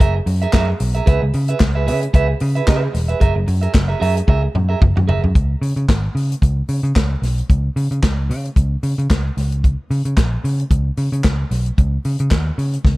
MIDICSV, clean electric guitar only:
0, 0, Header, 1, 3, 480
1, 0, Start_track
1, 0, Tempo, 535236
1, 963, Time_signature, 4, 2, 24, 8
1, 11633, End_track
2, 0, Start_track
2, 0, Title_t, "Clean electric guitar"
2, 0, Program_c, 0, 27
2, 0, Note_on_c, 0, 68, 83
2, 0, Note_on_c, 0, 70, 94
2, 10, Note_on_c, 0, 76, 96
2, 124, Note_off_c, 0, 76, 0
2, 138, Note_off_c, 0, 70, 0
2, 155, Note_off_c, 0, 68, 0
2, 374, Note_on_c, 0, 76, 72
2, 384, Note_on_c, 0, 70, 58
2, 390, Note_on_c, 0, 68, 50
2, 467, Note_off_c, 0, 68, 0
2, 475, Note_off_c, 0, 70, 0
2, 476, Note_off_c, 0, 76, 0
2, 478, Note_on_c, 0, 68, 89
2, 486, Note_on_c, 0, 70, 101
2, 496, Note_on_c, 0, 76, 101
2, 603, Note_off_c, 0, 76, 0
2, 615, Note_off_c, 0, 70, 0
2, 637, Note_off_c, 0, 68, 0
2, 849, Note_on_c, 0, 76, 69
2, 860, Note_on_c, 0, 70, 52
2, 864, Note_on_c, 0, 68, 47
2, 940, Note_off_c, 0, 68, 0
2, 951, Note_on_c, 0, 68, 91
2, 953, Note_off_c, 0, 76, 0
2, 956, Note_off_c, 0, 70, 0
2, 960, Note_on_c, 0, 71, 94
2, 969, Note_on_c, 0, 76, 95
2, 1084, Note_off_c, 0, 76, 0
2, 1094, Note_off_c, 0, 71, 0
2, 1113, Note_off_c, 0, 68, 0
2, 1334, Note_on_c, 0, 76, 62
2, 1341, Note_on_c, 0, 71, 58
2, 1350, Note_on_c, 0, 68, 50
2, 1431, Note_off_c, 0, 68, 0
2, 1435, Note_off_c, 0, 76, 0
2, 1436, Note_off_c, 0, 71, 0
2, 1571, Note_on_c, 0, 76, 63
2, 1579, Note_on_c, 0, 71, 59
2, 1587, Note_on_c, 0, 68, 56
2, 1663, Note_off_c, 0, 68, 0
2, 1670, Note_off_c, 0, 71, 0
2, 1674, Note_off_c, 0, 76, 0
2, 1674, Note_on_c, 0, 68, 63
2, 1680, Note_on_c, 0, 71, 72
2, 1691, Note_on_c, 0, 76, 84
2, 1797, Note_off_c, 0, 76, 0
2, 1810, Note_off_c, 0, 71, 0
2, 1834, Note_off_c, 0, 68, 0
2, 1914, Note_on_c, 0, 68, 81
2, 1922, Note_on_c, 0, 71, 89
2, 1931, Note_on_c, 0, 76, 110
2, 2037, Note_off_c, 0, 76, 0
2, 2048, Note_off_c, 0, 71, 0
2, 2074, Note_off_c, 0, 68, 0
2, 2290, Note_on_c, 0, 76, 59
2, 2301, Note_on_c, 0, 71, 60
2, 2306, Note_on_c, 0, 68, 49
2, 2382, Note_off_c, 0, 68, 0
2, 2392, Note_off_c, 0, 71, 0
2, 2392, Note_on_c, 0, 68, 84
2, 2393, Note_off_c, 0, 76, 0
2, 2403, Note_on_c, 0, 71, 98
2, 2407, Note_on_c, 0, 76, 97
2, 2515, Note_off_c, 0, 76, 0
2, 2525, Note_off_c, 0, 71, 0
2, 2583, Note_off_c, 0, 68, 0
2, 2766, Note_on_c, 0, 76, 68
2, 2776, Note_on_c, 0, 71, 65
2, 2784, Note_on_c, 0, 68, 50
2, 2860, Note_off_c, 0, 68, 0
2, 2870, Note_off_c, 0, 76, 0
2, 2871, Note_on_c, 0, 68, 84
2, 2875, Note_off_c, 0, 71, 0
2, 2878, Note_on_c, 0, 70, 82
2, 2886, Note_on_c, 0, 76, 83
2, 2997, Note_off_c, 0, 76, 0
2, 3008, Note_off_c, 0, 70, 0
2, 3032, Note_off_c, 0, 68, 0
2, 3241, Note_on_c, 0, 76, 59
2, 3252, Note_on_c, 0, 70, 61
2, 3258, Note_on_c, 0, 68, 50
2, 3338, Note_off_c, 0, 68, 0
2, 3342, Note_off_c, 0, 70, 0
2, 3347, Note_off_c, 0, 76, 0
2, 3480, Note_on_c, 0, 76, 61
2, 3487, Note_on_c, 0, 70, 55
2, 3494, Note_on_c, 0, 68, 48
2, 3576, Note_off_c, 0, 68, 0
2, 3586, Note_off_c, 0, 76, 0
2, 3586, Note_on_c, 0, 68, 86
2, 3588, Note_off_c, 0, 70, 0
2, 3599, Note_on_c, 0, 70, 85
2, 3604, Note_on_c, 0, 76, 102
2, 3721, Note_off_c, 0, 76, 0
2, 3734, Note_off_c, 0, 70, 0
2, 3749, Note_off_c, 0, 68, 0
2, 3834, Note_on_c, 0, 68, 71
2, 3844, Note_on_c, 0, 70, 74
2, 3852, Note_on_c, 0, 76, 92
2, 3960, Note_off_c, 0, 76, 0
2, 3971, Note_off_c, 0, 70, 0
2, 3993, Note_off_c, 0, 68, 0
2, 4203, Note_on_c, 0, 76, 66
2, 4211, Note_on_c, 0, 70, 59
2, 4218, Note_on_c, 0, 68, 54
2, 4301, Note_off_c, 0, 68, 0
2, 4308, Note_off_c, 0, 70, 0
2, 4308, Note_off_c, 0, 76, 0
2, 4552, Note_on_c, 0, 68, 73
2, 4559, Note_on_c, 0, 70, 76
2, 4565, Note_on_c, 0, 76, 82
2, 4675, Note_off_c, 0, 76, 0
2, 4685, Note_off_c, 0, 70, 0
2, 4712, Note_off_c, 0, 68, 0
2, 11633, End_track
3, 0, Start_track
3, 0, Title_t, "Muted clean electric guitar strokes"
3, 135, Note_on_c, 9, 29, 52
3, 225, Note_off_c, 9, 29, 0
3, 239, Note_on_c, 9, 29, 44
3, 329, Note_off_c, 9, 29, 0
3, 614, Note_on_c, 9, 29, 43
3, 703, Note_off_c, 9, 29, 0
3, 714, Note_on_c, 9, 29, 40
3, 804, Note_off_c, 9, 29, 0
3, 1094, Note_on_c, 9, 29, 48
3, 1184, Note_off_c, 9, 29, 0
3, 1199, Note_on_c, 9, 29, 40
3, 1288, Note_off_c, 9, 29, 0
3, 1441, Note_on_c, 9, 29, 46
3, 1531, Note_off_c, 9, 29, 0
3, 1808, Note_on_c, 9, 29, 52
3, 1898, Note_off_c, 9, 29, 0
3, 2048, Note_on_c, 9, 29, 48
3, 2138, Note_off_c, 9, 29, 0
3, 2158, Note_on_c, 9, 29, 37
3, 2248, Note_off_c, 9, 29, 0
3, 2525, Note_on_c, 9, 29, 47
3, 2615, Note_off_c, 9, 29, 0
3, 2625, Note_on_c, 9, 29, 38
3, 2714, Note_off_c, 9, 29, 0
3, 3008, Note_on_c, 9, 29, 49
3, 3097, Note_off_c, 9, 29, 0
3, 3109, Note_on_c, 9, 29, 33
3, 3198, Note_off_c, 9, 29, 0
3, 3349, Note_on_c, 9, 29, 42
3, 3438, Note_off_c, 9, 29, 0
3, 3732, Note_on_c, 9, 29, 41
3, 3822, Note_off_c, 9, 29, 0
3, 3971, Note_on_c, 9, 29, 52
3, 4060, Note_off_c, 9, 29, 0
3, 4079, Note_on_c, 9, 29, 41
3, 4169, Note_off_c, 9, 29, 0
3, 4311, Note_on_c, 9, 29, 40
3, 4401, Note_off_c, 9, 29, 0
3, 4448, Note_on_c, 9, 29, 52
3, 4537, Note_off_c, 9, 29, 0
3, 4686, Note_on_c, 9, 29, 43
3, 4775, Note_off_c, 9, 29, 0
3, 11633, End_track
0, 0, End_of_file